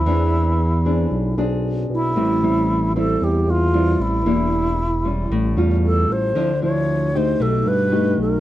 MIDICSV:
0, 0, Header, 1, 4, 480
1, 0, Start_track
1, 0, Tempo, 524017
1, 53, Time_signature, 4, 2, 24, 8
1, 7695, End_track
2, 0, Start_track
2, 0, Title_t, "Alto flute"
2, 0, Program_c, 0, 73
2, 0, Note_on_c, 0, 64, 86
2, 1262, Note_off_c, 0, 64, 0
2, 1777, Note_on_c, 0, 64, 82
2, 2680, Note_off_c, 0, 64, 0
2, 2732, Note_on_c, 0, 69, 86
2, 2965, Note_on_c, 0, 67, 82
2, 2978, Note_off_c, 0, 69, 0
2, 3205, Note_on_c, 0, 65, 88
2, 3219, Note_off_c, 0, 67, 0
2, 3679, Note_on_c, 0, 64, 82
2, 3693, Note_off_c, 0, 65, 0
2, 5108, Note_off_c, 0, 64, 0
2, 5365, Note_on_c, 0, 69, 83
2, 5607, Note_on_c, 0, 72, 86
2, 5621, Note_off_c, 0, 69, 0
2, 6071, Note_off_c, 0, 72, 0
2, 6077, Note_on_c, 0, 73, 91
2, 6564, Note_on_c, 0, 72, 81
2, 6577, Note_off_c, 0, 73, 0
2, 6795, Note_on_c, 0, 69, 79
2, 6809, Note_off_c, 0, 72, 0
2, 7036, Note_on_c, 0, 71, 90
2, 7050, Note_off_c, 0, 69, 0
2, 7505, Note_off_c, 0, 71, 0
2, 7527, Note_on_c, 0, 70, 84
2, 7695, Note_off_c, 0, 70, 0
2, 7695, End_track
3, 0, Start_track
3, 0, Title_t, "Nylon-string guitar"
3, 0, Program_c, 1, 24
3, 55, Note_on_c, 1, 52, 51
3, 61, Note_on_c, 1, 60, 49
3, 66, Note_on_c, 1, 62, 46
3, 66, Note_on_c, 1, 68, 56
3, 534, Note_off_c, 1, 60, 0
3, 534, Note_off_c, 1, 62, 0
3, 537, Note_off_c, 1, 68, 0
3, 778, Note_on_c, 1, 60, 47
3, 783, Note_on_c, 1, 62, 51
3, 786, Note_on_c, 1, 68, 58
3, 992, Note_off_c, 1, 52, 0
3, 1218, Note_off_c, 1, 60, 0
3, 1220, Note_off_c, 1, 62, 0
3, 1222, Note_off_c, 1, 68, 0
3, 1260, Note_on_c, 1, 60, 55
3, 1263, Note_on_c, 1, 62, 59
3, 1266, Note_on_c, 1, 68, 67
3, 1959, Note_off_c, 1, 60, 0
3, 1959, Note_off_c, 1, 62, 0
3, 1962, Note_off_c, 1, 68, 0
3, 1978, Note_on_c, 1, 45, 51
3, 1982, Note_on_c, 1, 55, 54
3, 1983, Note_on_c, 1, 60, 52
3, 1988, Note_on_c, 1, 64, 60
3, 2180, Note_off_c, 1, 55, 0
3, 2180, Note_off_c, 1, 60, 0
3, 2182, Note_off_c, 1, 64, 0
3, 2225, Note_on_c, 1, 55, 52
3, 2231, Note_on_c, 1, 60, 52
3, 2231, Note_on_c, 1, 64, 51
3, 2662, Note_off_c, 1, 55, 0
3, 2664, Note_off_c, 1, 60, 0
3, 2665, Note_off_c, 1, 64, 0
3, 2707, Note_on_c, 1, 55, 53
3, 2710, Note_on_c, 1, 60, 58
3, 2716, Note_on_c, 1, 64, 58
3, 2913, Note_off_c, 1, 45, 0
3, 3383, Note_off_c, 1, 55, 0
3, 3385, Note_off_c, 1, 60, 0
3, 3386, Note_off_c, 1, 64, 0
3, 3421, Note_on_c, 1, 55, 48
3, 3424, Note_on_c, 1, 60, 51
3, 3427, Note_on_c, 1, 64, 56
3, 3860, Note_off_c, 1, 55, 0
3, 3862, Note_off_c, 1, 60, 0
3, 3863, Note_off_c, 1, 64, 0
3, 3901, Note_on_c, 1, 58, 47
3, 3903, Note_on_c, 1, 52, 47
3, 3907, Note_on_c, 1, 62, 45
3, 3911, Note_on_c, 1, 67, 59
3, 4375, Note_off_c, 1, 58, 0
3, 4379, Note_off_c, 1, 62, 0
3, 4380, Note_off_c, 1, 67, 0
3, 4620, Note_on_c, 1, 55, 51
3, 4627, Note_on_c, 1, 61, 54
3, 4835, Note_off_c, 1, 52, 0
3, 4867, Note_on_c, 1, 45, 54
3, 5060, Note_off_c, 1, 55, 0
3, 5062, Note_off_c, 1, 61, 0
3, 5097, Note_on_c, 1, 55, 55
3, 5102, Note_on_c, 1, 61, 53
3, 5109, Note_on_c, 1, 65, 62
3, 5797, Note_off_c, 1, 45, 0
3, 5797, Note_off_c, 1, 55, 0
3, 5801, Note_off_c, 1, 61, 0
3, 5802, Note_off_c, 1, 65, 0
3, 5820, Note_on_c, 1, 50, 47
3, 5823, Note_on_c, 1, 53, 58
3, 5826, Note_on_c, 1, 60, 53
3, 5829, Note_on_c, 1, 64, 57
3, 5960, Note_off_c, 1, 53, 0
3, 5961, Note_off_c, 1, 60, 0
3, 5963, Note_off_c, 1, 64, 0
3, 6063, Note_on_c, 1, 53, 54
3, 6070, Note_on_c, 1, 64, 55
3, 6500, Note_off_c, 1, 53, 0
3, 6504, Note_off_c, 1, 64, 0
3, 6543, Note_on_c, 1, 57, 52
3, 6550, Note_on_c, 1, 63, 50
3, 6550, Note_on_c, 1, 67, 54
3, 6754, Note_off_c, 1, 50, 0
3, 6777, Note_on_c, 1, 47, 52
3, 7221, Note_off_c, 1, 57, 0
3, 7222, Note_off_c, 1, 63, 0
3, 7224, Note_off_c, 1, 67, 0
3, 7254, Note_on_c, 1, 57, 48
3, 7259, Note_on_c, 1, 63, 59
3, 7263, Note_on_c, 1, 67, 54
3, 7695, Note_off_c, 1, 47, 0
3, 7695, Note_off_c, 1, 57, 0
3, 7695, Note_off_c, 1, 63, 0
3, 7695, Note_off_c, 1, 67, 0
3, 7695, End_track
4, 0, Start_track
4, 0, Title_t, "Analog synth bass"
4, 0, Program_c, 2, 38
4, 49, Note_on_c, 2, 40, 98
4, 976, Note_off_c, 2, 40, 0
4, 1016, Note_on_c, 2, 35, 86
4, 1238, Note_off_c, 2, 35, 0
4, 1256, Note_on_c, 2, 35, 97
4, 1702, Note_off_c, 2, 35, 0
4, 1737, Note_on_c, 2, 35, 89
4, 1959, Note_off_c, 2, 35, 0
4, 1975, Note_on_c, 2, 33, 96
4, 2899, Note_off_c, 2, 33, 0
4, 2942, Note_on_c, 2, 40, 91
4, 3162, Note_off_c, 2, 40, 0
4, 3177, Note_on_c, 2, 40, 100
4, 3623, Note_off_c, 2, 40, 0
4, 3657, Note_on_c, 2, 33, 89
4, 3879, Note_off_c, 2, 33, 0
4, 3891, Note_on_c, 2, 28, 92
4, 4817, Note_off_c, 2, 28, 0
4, 4858, Note_on_c, 2, 33, 92
4, 5080, Note_off_c, 2, 33, 0
4, 5099, Note_on_c, 2, 40, 99
4, 5544, Note_off_c, 2, 40, 0
4, 5575, Note_on_c, 2, 33, 88
4, 5798, Note_off_c, 2, 33, 0
4, 5813, Note_on_c, 2, 38, 86
4, 6737, Note_off_c, 2, 38, 0
4, 6777, Note_on_c, 2, 35, 93
4, 6999, Note_off_c, 2, 35, 0
4, 7017, Note_on_c, 2, 43, 92
4, 7462, Note_off_c, 2, 43, 0
4, 7495, Note_on_c, 2, 35, 89
4, 7695, Note_off_c, 2, 35, 0
4, 7695, End_track
0, 0, End_of_file